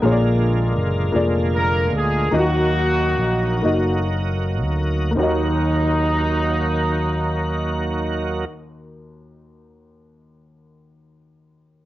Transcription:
0.02 fingered electric bass A#1, upright piano A#2 A#3 F4 G#4 C#5, tonewheel organ D3 G#3 A#3 F4
0.12 upright piano D5
0.76 fingered electric bass F#1
1.12 fingered electric bass F1, upright piano A#3 F4 G#4 D5
1.56 horn section A#4
1.92 fingered electric bass D2, horn section G#4
2.31 fingered electric bass D#2, upright piano D#3 A#3 D#4 F4 D#5, tonewheel organ F#3 A#3 D#4 F#4, horn section F#4
2.35 horn section A#3 D#4, upright piano F#4
3.18 fingered electric bass A#1
3.62 fingered electric bass F#1, upright piano A#3 D#4 F#4 D#5
4.63 fingered electric bass D2
5.11 upright piano A#3
5.15 fingered electric bass D#2, upright piano D#2 D#4, tonewheel organ D#3 F#4, horn section D#4
5.19 tonewheel organ F#3 A#3, upright piano F#4 D#5

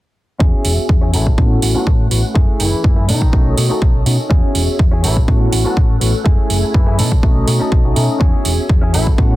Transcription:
0.39 fingered electric bass E2, tine electric piano B3 C#4 F#4 G#4, clean electric guitar C#4 E4 G#4, string machine C#4 G#4 E5, kick
0.65 fingered electric bass E1, open hi-hat
0.78 muted fingered electric bass stroke
0.89 fingered electric bass E2, kick
1.01 clean electric guitar C#4 E4 G#4
1.13 fingered electric bass A1, horn section E3 E4, string machine A3 F#5, clean electric guitar C#4 F#4 A4, open hi-hat
1.27 kick
1.38 fingered electric bass A2, tine electric piano B3 C#4 E4 F#4, kick
1.62 fingered electric bass A1, tine electric piano B3 C#4 E4 F#4, open hi-hat
1.75 horn section F#3 F#4, tine electric piano B3 C#4 E4 F#4, clean electric guitar C#4 F#4 A4
1.87 fingered electric bass A2, kick
2.10 fingered electric bass A1, tine electric piano B3 C#4 E4 F#4, open hi-hat
2.34 fingered electric bass F#2, tine electric piano A3 C#4 E4 G#4, clean electric guitar A3 E4 G#4, string machine E4 G#5, kick
2.60 fingered electric bass F#1, horn section E3 E4, open hi-hat
2.73 muted fingered electric bass stroke
2.84 fingered electric bass F#2, kick
2.96 clean electric guitar A3 E4 G#4
3.08 fingered electric bass B2, horn section D#3 D#4, clean electric guitar C#4 D#4 A4, string machine C#4 A4 D#5, open hi-hat
3.22 kick
3.33 fingered electric bass B1, tine electric piano A3 C#4 D#4 F#4, kick
3.57 fingered electric bass B2, tine electric piano A3 C#4 D#4 F#4, open hi-hat
3.69 tine electric piano A3 C#4 D#4 F#4, clean electric guitar C#4 D#4 A4, muted fingered electric bass stroke
3.82 fingered electric bass B1, kick
4.05 fingered electric bass B2, tine electric piano A3 C#4 D#4 F#4, open hi-hat
4.29 fingered electric bass E2, tine electric piano B3 C#4 F#4 G#4, clean electric guitar C#4 E4 G#4, string machine G#4 E5, kick
4.55 fingered electric bass E1, open hi-hat
4.68 muted fingered electric bass stroke
4.79 fingered electric bass E2, kick
4.91 clean electric guitar C#4 E4 G#4
5.03 fingered electric bass A1, horn section E3 E4, string machine A3 C#4 F#5, clean electric guitar C#4 F#4 A4, open hi-hat
5.17 kick
5.27 fingered electric bass A2, tine electric piano B3 C#4 E4 F#4, kick
5.52 fingered electric bass A1, tine electric piano B3 C#4 E4 F#4, open hi-hat
5.65 horn section F#3 F#4, tine electric piano B3 C#4 E4 F#4, clean electric guitar C#4 F#4 A4
5.77 fingered electric bass A2, kick
6.00 fingered electric bass A1, tine electric piano B3 C#4 E4 F#4, open hi-hat
6.24 fingered electric bass F#2, tine electric piano A3 C#4 E4 G#4, clean electric guitar A3 E4 G#4, string machine E4 G#5, kick
6.50 fingered electric bass F#1, open hi-hat
6.63 muted fingered electric bass stroke
6.74 fingered electric bass F#2, horn section E3 E4, kick
6.86 clean electric guitar A3 E4 G#4
6.98 fingered electric bass B2, clean electric guitar C#4 D#4 A4, string machine C#4 D#5, open hi-hat
7.12 kick
7.23 fingered electric bass B1, tine electric piano A3 C#4 D#4 F#4, kick
7.47 fingered electric bass B2, tine electric piano A3 C#4 D#4 F#4, open hi-hat
7.60 clean electric guitar C#4 D#4 A4, muted fingered electric bass stroke
7.72 fingered electric bass B1, kick
7.84 tine electric piano A3 C#4 D#4 F#4
7.96 fingered electric bass B2, tine electric piano A3 C#4 D#4 A4, open hi-hat
8.20 fingered electric bass E2, tine electric piano B3, clean electric guitar C#4 E4 G#4, string machine G#4 E5, kick
8.45 fingered electric bass E1, open hi-hat
8.58 muted fingered electric bass stroke
8.69 fingered electric bass E2, kick
8.81 clean electric guitar C#4 E4 G#4
8.93 fingered electric bass A1, horn section E3 E4, string machine A3 F#5, clean electric guitar C#4 F#4 A4, open hi-hat
9.07 kick
9.18 fingered electric bass A2, tine electric piano B3 C#4 E4 F#4, kick

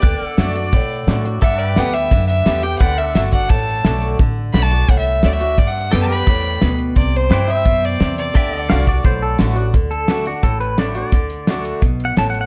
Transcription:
Already playing: fiddle D5
0.03 upright bass D2, steel-string acoustic guitar D3, pedal steel guitar B4 D5 G5, kick, closed hi-hat
0.21 pedal steel guitar F#5, muted upright bass stroke
0.28 pedal steel guitar A4
0.37 upright bass F#2, steel-string acoustic guitar D3 A3 D4 F#4, fiddle D5, snare, closed hi-hat
0.55 steel-string acoustic guitar D4 F#4, closed hi-hat
0.73 steel-string acoustic guitar A2, upright bass B2, kick, closed hi-hat
1.07 upright bass A2, steel-string acoustic guitar D3 A3 D4 F#4, snare, closed hi-hat
1.25 steel-string acoustic guitar D4 F#4, closed hi-hat
1.42 steel-string acoustic guitar G2, upright bass G2, pedal steel guitar A4 D5 F#5, fiddle E5, kick, closed hi-hat
1.59 fiddle D5
1.64 pedal steel guitar B4 G5
1.76 upright bass D2, steel-string acoustic guitar D3 G3 B3 G4, fiddle F#5, snare, closed hi-hat
1.94 steel-string acoustic guitar B3 G4, fiddle E5, closed hi-hat
2.11 upright bass F#2, steel-string acoustic guitar D3, kick, closed hi-hat
2.27 fiddle E5
2.46 upright bass E2, steel-string acoustic guitar D3 G3 B3 G4, snare, closed hi-hat
2.63 steel-string acoustic guitar B3 G4, fiddle G5, closed hi-hat
2.79 upright bass D2, steel-string acoustic guitar D3, pedal steel guitar B4 D5, fiddle F#5, kick, closed hi-hat
2.83 pedal steel guitar G5
2.98 fiddle E5
3.03 pedal steel guitar A4 F#5
3.14 upright bass G1, steel-string acoustic guitar D3 A3 D4 F#4, fiddle E5, snare, closed hi-hat
3.32 steel-string acoustic guitar D4 F#4, fiddle F#5, kick, closed hi-hat
3.50 upright bass A1, steel-string acoustic guitar A2, fiddle A5, kick, closed hi-hat
3.85 upright bass B1, steel-string acoustic guitar D3 A3 D4 F#4, snare, closed hi-hat
4.02 closed hi-hat
4.19 upright bass A1, steel-string acoustic guitar D3, kick, closed hi-hat
4.53 upright bass B1, steel-string acoustic guitar D3 A3 D4 F#4, fiddle B5, snare, closed hi-hat
4.62 fiddle A5
4.71 steel-string acoustic guitar D4 F#4, closed hi-hat
4.88 upright bass C2, steel-string acoustic guitar A2, fiddle F#5, kick, closed hi-hat
4.98 fiddle E5
5.23 upright bass D2, steel-string acoustic guitar D3 A3 D4 F#4, fiddle D5, snare, closed hi-hat
5.33 fiddle E5
5.40 steel-string acoustic guitar D4 F#4, closed hi-hat
5.58 upright bass G2, steel-string acoustic guitar G2, fiddle D5, kick, closed hi-hat
5.67 fiddle F#5
5.92 upright bass F#2, steel-string acoustic guitar D3 G3 B3 G4, pedal steel guitar A4 D5 G5, fiddle G5, snare, closed hi-hat
6.02 fiddle A5
6.10 steel-string acoustic guitar B3 G4, fiddle B5, closed hi-hat
6.17 pedal steel guitar B4
6.27 upright bass E2, steel-string acoustic guitar A2, kick, closed hi-hat
6.62 upright bass D2, steel-string acoustic guitar B2, snare, closed hi-hat
6.78 closed hi-hat
6.96 upright bass C2, steel-string acoustic guitar C3, fiddle D5, kick, closed hi-hat
7.16 fiddle C5
7.30 upright bass G2, steel-string acoustic guitar E3 G3 C4 E4, pedal steel guitar B4 D5, snare, closed hi-hat
7.34 pedal steel guitar G5
7.47 steel-string acoustic guitar C4 E4, fiddle E5, closed hi-hat
7.52 pedal steel guitar C5
7.58 pedal steel guitar E5
7.65 upright bass F#2, steel-string acoustic guitar B2, kick, closed hi-hat
7.85 fiddle D5
8.00 upright bass E2, steel-string acoustic guitar C3, snare, closed hi-hat
8.18 fiddle D5, closed hi-hat
8.34 upright bass D2, steel-string acoustic guitar D3, pedal steel guitar A4 E5 G5, kick, closed hi-hat
8.57 pedal steel guitar F#5
8.61 pedal steel guitar D5
8.69 upright bass C2, steel-string acoustic guitar D3 A3 D4 F#4, pedal steel guitar F5, snare, closed hi-hat
8.87 steel-string acoustic guitar D4 F#4, pedal steel guitar D5, kick, closed hi-hat
9.04 upright bass B1, steel-string acoustic guitar A2, pedal steel guitar C5, kick, closed hi-hat
9.22 pedal steel guitar A4
9.38 upright bass A1, steel-string acoustic guitar D3 A3 D4 F#4, pedal steel guitar F#4, snare, closed hi-hat
9.56 steel-string acoustic guitar D4 F#4, closed hi-hat
9.74 upright bass D2, steel-string acoustic guitar D3, kick, closed hi-hat
9.91 pedal steel guitar A4, closed hi-hat
10.08 steel-string acoustic guitar D3 A3 D4 F#4, snare, closed hi-hat
10.26 steel-string acoustic guitar D4 F#4, pedal steel guitar F#4, closed hi-hat
10.43 upright bass A1, steel-string acoustic guitar A2, pedal steel guitar A4, kick, closed hi-hat
10.60 pedal steel guitar B4, closed hi-hat
10.77 steel-string acoustic guitar D3 A3 D4 F#4, pedal steel guitar D5, snare, closed hi-hat
10.95 steel-string acoustic guitar D4 F#4, pedal steel guitar D5, closed hi-hat
11.12 upright bass D2, steel-string acoustic guitar D3, kick, closed hi-hat
11.30 closed hi-hat
11.47 steel-string acoustic guitar D3 A3 D4 F#4, snare, closed hi-hat
11.65 closed hi-hat
11.82 upright bass B1, steel-string acoustic guitar B2, kick, closed hi-hat
12.00 closed hi-hat
12.05 pedal steel guitar F#5
12.17 upright bass A1, steel-string acoustic guitar A2, pedal steel guitar A5, snare, closed hi-hat
12.30 pedal steel guitar F#5
12.35 closed hi-hat
12.41 pedal steel guitar F#5

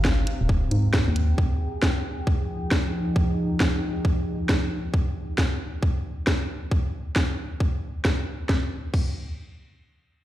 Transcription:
Already playing: fm bass G#1, ambient pad C4 D4 F5 A#5
0.05 kick, snare
0.25 ambient pad G#4, closed hi-hat
0.41 fm bass D#1, ambient pad G5
0.49 kick
0.71 fm bass G#2, closed hi-hat
0.94 kick, snare
1.08 fm bass D#2
1.16 closed hi-hat
1.38 ambient pad F3, kick
1.82 kick, snare
1.87 ambient pad D#4
2.27 kick
2.71 kick, snare
3.16 kick
3.60 kick, snare
4.05 kick
4.49 kick, snare
4.94 kick
5.38 kick, snare
5.83 kick
6.27 kick, snare
6.71 kick
7.16 kick, snare
7.60 kick
8.05 kick, snare
8.49 kick, snare
8.94 kick, crash

